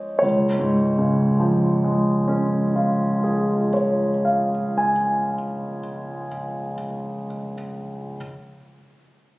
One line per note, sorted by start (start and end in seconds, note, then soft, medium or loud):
0.00 0.19 F3 soft
0.00 0.20 G#3 soft
0.00 0.19 C#4 soft
0.00 0.26 C5 soft
0.00 0.19 C#5 soft
0.00 0.26 D#5 soft
0.19 3.73 C#2 soft
0.19 3.70 C#5 soft
0.59 4.10 G#2 soft
0.98 4.49 C#3 soft
1.40 4.90 F3 soft
1.84 5.35 G#3 soft
2.28 5.79 C#4 soft
2.76 6.26 F4 soft
3.24 6.75 G#4 soft
3.74 7.24 C#5 soft
4.25 7.55 F5 soft
4.78 7.55 G#5 soft